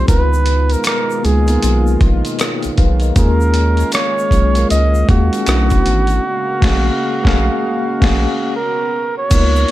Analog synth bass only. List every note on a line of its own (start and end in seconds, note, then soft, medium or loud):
0.09 0.76 C#2 medium
1.25 1.58 C#2 medium
1.64 1.97 B1 medium
2.02 2.22 A#1 medium
2.65 2.70 B1 soft
2.79 3.12 B1 medium
3.17 3.84 D#2 loud
4.32 4.65 B1 medium
4.71 5.04 C#2 medium
5.09 5.30 D#2 medium
5.48 5.81 B1 loud
5.86 6.19 G#1 medium
6.63 6.90 A#1 medium
7.25 7.50 A#1 medium
8.03 8.27 A#1 loud
9.32 9.65 C#2 loud